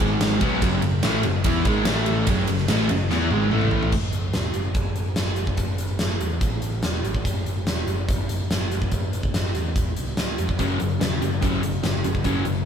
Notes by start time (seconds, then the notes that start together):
0.00 G#1 G#2 D#3 G#3, ride
0.21 snare, ride
0.41 B1 B2 F#3 B3, kick, ride
0.61 F#1 F#2 C#3 F#3, kick, ride
0.82 F#1 F#2 C#3, ride
1.03 A1 A2 E3 A3, snare, ride
1.23 F#1 F#2 C#3, ride
1.44 E2 E3 B3 E4, kick, ride
1.65 G#1 G#2 D#3 G#3, kick, ride
1.85 A1 A2 E3 A3, snare, ride
2.06 ride
2.27 F#1 F#2 C#3 F#3, kick, ride
2.47 F#1 F#2 C#3, ride
2.58 snare
2.68 A1 A2 E3 A3, snare, ride
2.89 F#1 F#2 C#3, ride
3.10 E2 E3 B3 E4, snare
3.31 G#1 G#2 D#3 G#3, high tom
3.51 A1 A2 E3 A3, mid tom
3.61 mid tom
3.71 floor tom
3.83 floor tom
3.92 F#1, kick, crash
4.13 F#1, closed hi-hat
4.33 E1, snare, closed hi-hat
4.54 F#1, closed hi-hat
4.75 F#1, kick, closed hi-hat
4.96 F#1, closed hi-hat
5.16 F#1, snare, closed hi-hat
5.36 F#1, closed hi-hat
5.47 kick
5.57 F#1, kick, closed hi-hat
5.78 F#1, closed hi-hat
5.99 F#1, snare, closed hi-hat
6.21 E2, closed hi-hat
6.41 A1, kick, closed hi-hat
6.62 A1, closed hi-hat
6.83 E1, snare, closed hi-hat
7.05 G#1, closed hi-hat
7.15 kick
7.25 F#1, kick, closed hi-hat
7.46 F#1, closed hi-hat
7.67 E1, snare, closed hi-hat
7.87 F#1, closed hi-hat
8.09 F#1, kick, closed hi-hat
8.29 F#1, closed hi-hat
8.50 F#1, snare, closed hi-hat
8.71 F#1, closed hi-hat
8.82 kick
8.92 F#1, kick, closed hi-hat
9.13 F#1, closed hi-hat
9.23 kick
9.34 F#1, snare, closed hi-hat
9.55 E2, closed hi-hat
9.76 E1, kick, closed hi-hat
9.97 C2, closed hi-hat
10.17 C#2, snare, closed hi-hat
10.38 F2, closed hi-hat
10.49 kick
10.59 F#1 F#2 C#3 F#3, kick, closed hi-hat
10.79 F#1 F#2 C#3, closed hi-hat
11.01 E1 F#2 C#3, snare, closed hi-hat
11.22 F#1 F#2 C#3, closed hi-hat
11.42 F#1 F#2 C#3 F#3, kick, closed hi-hat
11.62 F#1 F#2 C#3, closed hi-hat
11.83 F#1 F#2 C#3, snare, closed hi-hat
12.04 F#1 F#2 C#3, closed hi-hat
12.15 kick
12.24 F#1 F#2 C#3 F#3, kick, closed hi-hat
12.45 F#1 F#2 C#3, closed hi-hat